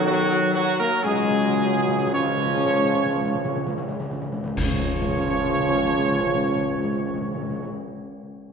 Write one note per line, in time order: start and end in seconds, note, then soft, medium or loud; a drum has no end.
0.00 0.69 B1 loud
0.00 0.86 D#3 loud
0.00 2.10 F#3 loud
0.07 0.52 F#3 loud
0.07 0.51 F#4 loud
0.55 0.78 F#3 loud
0.55 0.78 F#4 loud
0.79 0.91 A#3 loud
0.79 1.03 A#4 loud
1.03 4.07 C#2 loud
1.03 4.05 C#3 loud
1.03 1.12 C#3 medium
1.03 2.10 G#3 loud
1.03 2.13 G#4 loud
1.13 1.21 C#3 medium
1.22 1.30 C#3 medium
1.31 1.39 C#3 medium
1.40 1.48 C#3 medium
1.49 1.58 C#3 medium
1.59 1.67 C#3 medium
1.69 1.77 C#3 medium
1.78 1.87 C#3 medium
1.88 1.97 C#3 medium
1.98 2.06 C#3 medium
2.07 2.16 C#3 medium
2.13 4.10 F3 loud
2.13 3.88 C#4 loud
2.13 3.88 C#5 loud
2.17 2.26 C#3 medium
2.27 2.35 C#3 medium
2.37 2.45 C#3 medium
2.46 2.55 C#3 medium
2.56 2.64 C#3 medium
2.66 2.74 C#3 medium
2.75 2.84 C#3 medium
2.85 2.94 C#3 medium
2.95 3.04 C#3 loud
3.06 3.14 C#3 loud
3.15 3.24 C#3 loud
3.25 3.34 C#3 loud
3.35 3.44 C#3 loud
3.45 3.54 C#3 loud
3.56 3.65 C#3 loud
3.67 3.76 C#3 loud
3.78 3.87 C#3 loud
3.89 3.99 C#3 loud
4.00 4.10 C#3 loud
4.11 4.21 C#3 loud
4.22 4.31 C#3 loud
4.32 4.42 C#3 loud
4.44 4.53 C#3 loud
4.56 7.69 C#2 loud
4.56 7.69 C#3 loud
4.56 4.64 C#3 medium
4.56 7.69 F3 loud
4.56 7.67 C#4 loud
4.56 7.68 C#5 loud
4.56 concert bass drum medium
4.56 crash medium
4.64 4.71 C#3 medium
4.72 4.79 C#3 medium
4.79 4.87 C#3 medium
4.87 4.94 C#3 medium
4.94 5.01 C#3 medium
5.01 5.08 C#3 loud
5.09 5.16 C#3 medium
5.16 5.23 C#3 medium
5.24 5.31 C#3 loud
5.31 5.38 C#3 medium
5.38 5.45 C#3 medium
5.45 5.52 C#3 medium
5.52 5.59 C#3 medium
5.59 5.67 C#3 loud
5.67 5.74 C#3 medium
5.74 5.81 C#3 medium
5.82 5.89 C#3 loud
5.89 5.96 C#3 loud
5.97 6.04 C#3 medium
6.04 6.11 C#3 medium
6.11 6.19 C#3 medium
6.20 6.26 C#3 medium
6.26 6.34 C#3 medium
6.34 6.41 C#3 loud
6.41 6.48 C#3 medium
6.48 6.55 C#3 medium
6.55 6.63 C#3 medium
6.63 6.70 C#3 loud
6.70 6.77 C#3 medium
6.77 6.84 C#3 loud
6.84 6.92 C#3 loud
6.92 6.99 C#3 medium
6.99 7.06 C#3 medium
7.07 7.14 C#3 medium
7.14 7.21 C#3 medium
7.21 7.28 C#3 medium
7.28 7.35 C#3 medium
7.35 7.42 C#3 medium
7.42 7.49 C#3 medium
7.49 7.56 C#3 loud
7.56 7.63 C#3 medium
7.63 7.70 C#3 loud